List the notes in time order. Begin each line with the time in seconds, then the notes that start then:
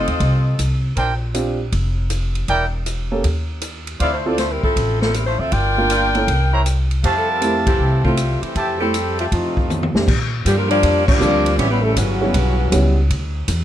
Already playing: C4 F4 A4 D#5
0.07 D#2, ride
0.20 C2, kick, ride
0.59 C2, hi-hat pedal, ride
0.97 A#1 D4 A#4 C5 G5, kick, ride
1.34 C4 D4 F4 G4, hi-hat pedal, ride
1.72 F1, kick, ride
2.10 hi-hat pedal, ride
2.35 ride
2.48 E1 E4 A#4 D5 G5, kick, ride
2.86 hi-hat pedal, ride
3.11 A#3 C#4 G4 A4
3.24 D#2, kick, ride
3.61 hi-hat pedal, ride
3.87 ride
4.00 D2 C4 E4 F4 A4 C5 D5 F5, kick, ride
4.13 A3 E4 F4 C5
4.26 C4 E4 F4 A4 D5
4.38 A3 E4 F4 C5, snare, hi-hat pedal, ride
4.51 G3 C4 E4 A#4
4.63 F3 C4 E4 A4, muted upright bass stroke, kick
4.76 A1, kick, ride
5.01 F3 C4 E4 A4, snare
5.14 G3 C4 E4 A#4, hi-hat pedal, ride
5.27 A3 E4 F4 C5
5.38 D2 C4 F4 A4 E5
5.52 G1 F4 A#4 D5 G5, kick, ride
5.78 A#3 D4 F4 A#4
5.89 F4 A#4 D5 G5, hi-hat pedal, ride
6.15 A#3 C#4 E4 A4, ride
6.27 C2, kick, ride
6.52 E4 C5 C#5 A#5
6.66 hi-hat pedal, ride
6.91 ride
7.03 F2 A3 E4 G4 C5 E5 F5 A5, kick, ride
7.17 G3 C4 E4 A4
7.30 G3 C4 E4 A#4
7.41 A3 C4 E4 G4, hi-hat pedal, ride
7.67 E3 A3 C4 G4, kick, ride
7.79 C2
8.04 G3 A3 C4 E4 F4 A4, kick
8.17 hi-hat pedal, ride
8.42 E3 A3 C4 G4, muted upright bass stroke, ride
8.55 F2 G4 E5 G5 A5, kick, ride
8.81 G3 A3 C4 E4 G4 A4
8.94 hi-hat pedal, ride
9.19 G3 A3 C4 F4, ride
9.32 F2 A2 C3 F3 A3 C4 D#4 F4, kick, ride
9.57 kick
9.70 hi-hat pedal, high tom
9.83 high tom
9.94 F2 A#2 G3 C4 D4 G4, snare
10.08 A#2, kick, crash
10.45 G2 D3 F3 G3 A#3 D4 G4, kick, hi-hat pedal, ride
10.57 F3 G3 A#3 D4 F4 A#4
10.69 F3 G3 A#3 D4 F4 G4 D5, ride
10.83 F2, kick, ride
11.06 F3 G3 A#3 D4 F4 G4 D5, kick, crash
11.20 D2 G3 A#3 C4 D4 F4, hi-hat pedal
11.46 ride
11.56 A1 E3 G3 B3 C#4 E4 G4 C#5, kick, ride
11.69 E3 G3 B3 C#4 E4 B4
11.82 C#3 E3 G3 A3 C#4 E4 A4
11.94 G1 G2 C#3 E3 F#3 C#4, kick, hi-hat pedal, ride
11.98 B3 F#4
12.21 G3 B3 C#4 E4 F#4
12.34 B1, kick, ride
12.72 C#2 G3 B3 C#4 E4 F#4, kick, hi-hat pedal, ride
13.10 D2, kick, ride
13.48 E2, kick, hi-hat pedal, ride